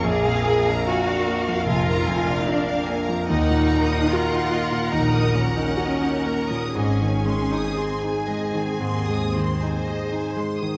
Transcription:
X:1
M:4/4
L:1/16
Q:1/4=72
K:Abmix
V:1 name="Violin section"
=d f a b a f d f a b a f d f a b | e g b e' b g e g b e' b g e g b e' | e a c' e' c' a e a c' e' c' a e a c' e' |]
V:2 name="Violin section"
f16 | g16 | a8- a2 c6 |]
V:3 name="Viola section"
B16 | B16 | A12- A3 z |]
V:4 name="Cello section"
A4 G4 F4 =D2 z2 | E4 F4 E2 D6 | D4 C8- C2 z2 |]
V:5 name="Grand piano"
B,,, F,, B, =D F D B, F,, B,,, B, F,, D F D B, F,, | E,, B,, B, E G E B, B,, E,, B, B,, E G E B, B,, | A,, E, A, E A E A, E, A,, A, E, E A E A, E, |]
V:6 name="Double bass section" clef=bass
B,,,4 z4 F,,,4 z4 | E,,4 z4 B,,,4 z4 | A,,,4 z4 E,,4 z4 |]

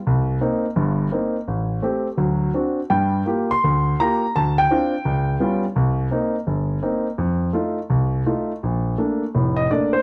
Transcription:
X:1
M:4/4
L:1/8
Q:"Swing" 1/4=168
K:Bb
V:1 name="Grand piano"
z8 | z8 | g2 z c'3 b2 | a g6 z |
z8 | z8 | z4 z e d c |]
V:2 name="Grand piano"
C,,2 [B,CE] z [G,,,G,,]2 [B,CE] z | A,,,2 [A,CG] z [D,,^F,]2 [CD^F] z | [G,,G,]2 [B,FG] z D,,2 [B,FG] z | D,,2 [CDF] z _D,,2 [G,_C_DF] z |
C,,2 [B,CE] z G,,,2 [B,CE] z | F,,2 [A,EF] z C,,2 [A,EF] z | B,,,2 [A,B,D] z [F,,,A,,]2 [A,B,D] z |]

